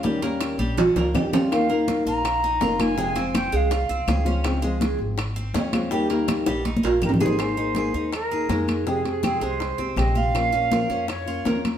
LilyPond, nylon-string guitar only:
\new Staff \with { instrumentName = "Nylon-string guitar" } { \time 4/4 \key aes \major \tempo 4 = 163 <ees g des' g'>8 <g des' g'>4. r4 <ees g des' g'>8 <g des' g'>8 | <ees bes ees' f' bes'>8 <bes ees' f' bes'>4. r4 <bes ees' f' bes'>8 <bes ees' f' bes'>8 | <c f aes c' f'>8 <f aes c' f'>4. r4 <f aes c' f'>8 <f aes c' f'>8 | <des f aes c' f'>8 <f aes c' f'>4. r4 <f aes c' f'>8 <f aes c' f'>8 |
<ees g bes ees' g'>8 <g bes ees' g'>4. r4 <g bes ees' g'>8 <g bes ees' g'>8 | <aes bes ees' aes'>8 <bes ees' aes'>8 <aes bes ees' aes'>8 <bes ees' aes'>8 r8 <bes ees' aes'>8 <aes bes ees' aes'>4 | <c f aes c' g'>8 <aes c' g'>8 <c f aes c' g'>8 <aes c' g'>8 r8 <aes c' g'>8 <c f aes c' g'>4 | <f bes des' f'>8 <bes des' f'>8 <f bes des' f'>8 <bes des' f'>8 r8 <bes des' f'>8 <f bes des' f'>4 | }